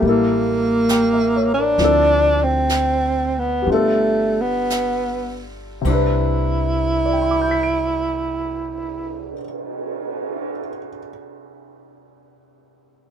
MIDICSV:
0, 0, Header, 1, 6, 480
1, 0, Start_track
1, 0, Key_signature, 0, "major"
1, 0, Tempo, 873362
1, 974, Time_signature, 4, 2, 24, 8
1, 974, Tempo, 923077
1, 1454, Tempo, 974026
1, 1934, Tempo, 1039861
1, 2414, Tempo, 1142857
1, 2894, Tempo, 1188119
1, 4334, Tempo, 1204819
1, 5802, End_track
2, 0, Start_track
2, 0, Title_t, "Grand piano"
2, 0, Program_c, 0, 0
2, 0, Control_c, 0, 64, 127
2, 0, Note_on_c, 0, 55, 52
2, 4, Note_on_c, 0, 58, 45
2, 21, Control_c, 0, 64, 0
2, 34, Note_on_c, 0, 64, 49
2, 48, Note_on_c, 0, 69, 54
2, 117, Control_c, 0, 64, 127
2, 497, Note_on_c, 0, 79, 36
2, 623, Note_on_c, 0, 76, 43
2, 722, Note_off_c, 0, 79, 0
2, 749, Note_on_c, 0, 73, 43
2, 827, Note_off_c, 0, 76, 0
2, 871, Note_on_c, 0, 70, 40
2, 890, Note_off_c, 0, 73, 0
2, 962, Note_off_c, 0, 55, 0
2, 970, Note_off_c, 0, 58, 0
2, 982, Control_c, 0, 64, 0
2, 984, Note_off_c, 0, 64, 0
2, 987, Note_on_c, 0, 53, 46
2, 991, Note_off_c, 0, 69, 0
2, 991, Note_on_c, 0, 60, 42
2, 996, Note_on_c, 0, 62, 42
2, 1005, Note_on_c, 0, 64, 40
2, 1010, Note_on_c, 0, 69, 52
2, 1031, Note_off_c, 0, 70, 0
2, 1086, Control_c, 0, 64, 127
2, 1911, Note_on_c, 0, 55, 46
2, 1926, Note_off_c, 0, 62, 0
2, 1926, Note_on_c, 0, 59, 40
2, 1934, Note_on_c, 0, 62, 40
2, 1940, Note_off_c, 0, 53, 0
2, 1941, Control_c, 0, 64, 0
2, 1942, Note_off_c, 0, 60, 0
2, 1948, Note_off_c, 0, 64, 0
2, 1948, Note_on_c, 0, 65, 39
2, 1950, Note_off_c, 0, 69, 0
2, 1966, Note_on_c, 0, 69, 50
2, 2018, Control_c, 0, 64, 127
2, 2878, Note_on_c, 0, 48, 48
2, 2884, Note_off_c, 0, 55, 0
2, 2891, Note_off_c, 0, 59, 0
2, 2891, Note_on_c, 0, 60, 43
2, 2894, Note_off_c, 0, 62, 0
2, 2900, Note_off_c, 0, 65, 0
2, 2900, Control_c, 0, 64, 0
2, 2900, Note_on_c, 0, 62, 45
2, 2908, Note_off_c, 0, 69, 0
2, 2915, Note_on_c, 0, 64, 44
2, 2926, Note_on_c, 0, 71, 53
2, 2967, Control_c, 0, 64, 127
2, 3380, Note_on_c, 0, 74, 30
2, 3410, Note_on_c, 0, 79, 32
2, 3446, Note_on_c, 0, 83, 30
2, 3482, Note_on_c, 0, 86, 29
2, 3526, Note_on_c, 0, 91, 26
2, 3565, Note_on_c, 0, 95, 28
2, 3613, Note_on_c, 0, 98, 25
2, 4291, Note_off_c, 0, 48, 0
2, 4303, Note_off_c, 0, 60, 0
2, 4312, Note_off_c, 0, 62, 0
2, 4327, Note_off_c, 0, 64, 0
2, 4338, Note_off_c, 0, 71, 0
2, 4770, Note_off_c, 0, 74, 0
2, 4800, Note_off_c, 0, 79, 0
2, 4835, Note_off_c, 0, 83, 0
2, 4870, Note_off_c, 0, 86, 0
2, 4913, Note_off_c, 0, 91, 0
2, 4952, Note_off_c, 0, 95, 0
2, 4999, Note_off_c, 0, 98, 0
2, 5802, End_track
3, 0, Start_track
3, 0, Title_t, "Tenor saxophone"
3, 0, Program_c, 1, 66
3, 41, Note_on_c, 1, 58, 74
3, 830, Note_off_c, 1, 58, 0
3, 849, Note_on_c, 1, 62, 86
3, 1321, Note_on_c, 1, 60, 74
3, 1329, Note_off_c, 1, 62, 0
3, 1797, Note_on_c, 1, 59, 63
3, 1804, Note_off_c, 1, 60, 0
3, 1946, Note_off_c, 1, 59, 0
3, 1958, Note_on_c, 1, 57, 71
3, 2278, Note_on_c, 1, 59, 69
3, 2285, Note_off_c, 1, 57, 0
3, 2745, Note_off_c, 1, 59, 0
3, 2911, Note_on_c, 1, 64, 74
3, 4307, Note_off_c, 1, 64, 0
3, 5802, End_track
4, 0, Start_track
4, 0, Title_t, "Upright bass"
4, 0, Program_c, 2, 32
4, 12, Note_on_c, 2, 33, 74
4, 952, Note_off_c, 2, 33, 0
4, 978, Note_on_c, 2, 38, 71
4, 1916, Note_off_c, 2, 38, 0
4, 1932, Note_on_c, 2, 31, 66
4, 2877, Note_off_c, 2, 31, 0
4, 2894, Note_on_c, 2, 36, 64
4, 4290, Note_off_c, 2, 36, 0
4, 5802, End_track
5, 0, Start_track
5, 0, Title_t, "Cymbal swell"
5, 3218, Note_on_c, 9, 59, 31
5, 4715, Note_off_c, 9, 59, 0
5, 5802, End_track
6, 0, Start_track
6, 0, Title_t, "Drums"
6, 16, Note_on_c, 9, 25, 33
6, 488, Note_on_c, 9, 38, 42
6, 488, Note_on_c, 9, 44, 52
6, 543, Note_off_c, 9, 38, 0
6, 543, Note_off_c, 9, 44, 0
6, 979, Note_off_c, 9, 25, 0
6, 979, Note_on_c, 9, 25, 30
6, 979, Note_on_c, 9, 38, 25
6, 1031, Note_off_c, 9, 38, 0
6, 1453, Note_on_c, 9, 38, 34
6, 1453, Note_on_c, 9, 44, 39
6, 1502, Note_off_c, 9, 38, 0
6, 1502, Note_off_c, 9, 44, 0
6, 1931, Note_off_c, 9, 25, 0
6, 1931, Note_on_c, 9, 25, 27
6, 2410, Note_on_c, 9, 38, 32
6, 2410, Note_on_c, 9, 44, 47
6, 2453, Note_off_c, 9, 38, 0
6, 2453, Note_off_c, 9, 44, 0
6, 2893, Note_on_c, 9, 36, 41
6, 2893, Note_on_c, 9, 51, 44
6, 2933, Note_off_c, 9, 36, 0
6, 2933, Note_off_c, 9, 51, 0
6, 3284, Note_off_c, 9, 25, 0
6, 5802, End_track
0, 0, End_of_file